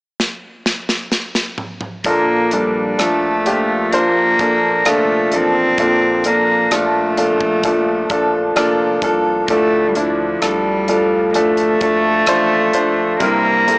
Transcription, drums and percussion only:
0.20 snare medium
0.66 snare medium
0.89 snare medium
1.12 snare medium
1.35 snare medium
1.58 mid tom medium
1.81 mid tom medium
2.04 kick medium
2.04 closed hi-hat medium
2.51 closed hi-hat medium
2.99 cross-stick medium
2.99 closed hi-hat medium
3.46 closed hi-hat medium
3.93 closed hi-hat medium
4.39 kick medium
4.39 closed hi-hat medium
4.85 cross-stick loud
4.85 closed hi-hat medium
5.32 closed hi-hat medium
5.78 kick medium
5.78 closed hi-hat medium
6.24 closed hi-hat medium
6.71 cross-stick loud
6.71 closed hi-hat medium
7.17 closed hi-hat medium
7.41 kick medium
7.63 kick medium
7.63 closed hi-hat medium
8.10 kick medium
8.10 closed hi-hat medium
8.56 cross-stick loud
8.56 closed hi-hat medium
9.02 kick medium
9.02 closed hi-hat medium
9.48 kick medium
9.48 closed hi-hat medium
9.95 closed hi-hat medium
10.42 cross-stick medium
10.42 closed hi-hat medium
10.88 closed hi-hat medium
11.34 closed hi-hat medium
11.57 closed hi-hat medium
11.81 kick medium
11.81 closed hi-hat medium
12.26 cross-stick loud
12.26 closed hi-hat medium
12.73 closed hi-hat medium
13.20 kick medium
13.20 closed hi-hat medium
13.68 closed hi-hat medium

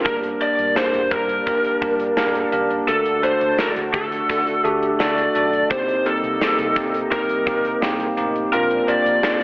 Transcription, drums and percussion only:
0.06 kick medium
0.06 closed hi-hat medium
0.23 closed hi-hat soft
0.41 closed hi-hat medium
0.59 closed hi-hat medium
0.76 snare medium
0.94 closed hi-hat soft
1.11 kick medium
1.11 closed hi-hat medium
1.29 closed hi-hat soft
1.47 kick medium
1.47 closed hi-hat medium
1.64 closed hi-hat soft
1.82 kick medium
1.82 closed hi-hat medium
2.00 closed hi-hat medium
2.17 snare loud
2.35 closed hi-hat soft
2.52 closed hi-hat medium
2.70 closed hi-hat soft
2.88 closed hi-hat medium
3.06 closed hi-hat soft
3.23 closed hi-hat medium
3.41 closed hi-hat medium
3.59 snare medium
3.76 closed hi-hat medium
3.94 kick medium
3.94 closed hi-hat medium
4.12 closed hi-hat soft
4.29 kick medium
4.29 closed hi-hat medium
4.47 closed hi-hat soft
4.65 closed hi-hat medium
4.83 closed hi-hat medium
5.00 snare loud
5.18 closed hi-hat soft
5.35 closed hi-hat medium
5.53 closed hi-hat soft
5.71 kick loud
5.71 closed hi-hat medium
5.88 closed hi-hat soft
6.06 closed hi-hat medium
6.24 closed hi-hat soft
6.41 snare loud
6.59 closed hi-hat medium
6.76 kick medium
6.76 closed hi-hat medium
6.94 closed hi-hat soft
7.12 kick medium
7.12 closed hi-hat medium
7.29 closed hi-hat soft
7.47 kick medium
7.47 closed hi-hat medium
7.65 closed hi-hat soft
7.82 snare loud
8.00 closed hi-hat medium
8.17 closed hi-hat medium
8.36 closed hi-hat soft
8.53 closed hi-hat medium
8.71 closed hi-hat soft
8.88 closed hi-hat medium
9.06 closed hi-hat soft
9.23 snare loud

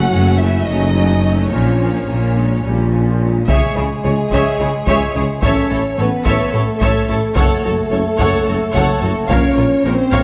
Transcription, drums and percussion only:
3.48 taiko medium
4.32 taiko medium
4.87 taiko medium
5.43 taiko medium
6.26 taiko medium
6.81 taiko medium
7.36 taiko medium
8.19 taiko medium
8.74 taiko medium
9.30 taiko medium
10.12 taiko medium

